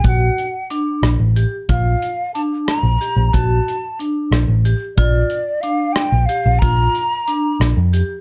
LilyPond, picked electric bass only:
\new Staff \with { instrumentName = "Picked electric bass" } { \clef bass \time 5/8 \key bes \major \tempo 4 = 91 bes,,8 r4 bes,,16 a,,8 r16 | bes,,8 r4 r16 bes,,16 r16 bes,,16 | bes,,8 r4 bes,,16 a,,8 r16 | bes,,8 r4 r16 bes,,16 r16 bes,,16 |
bes,,8 r4 bes,,16 f,8 r16 | }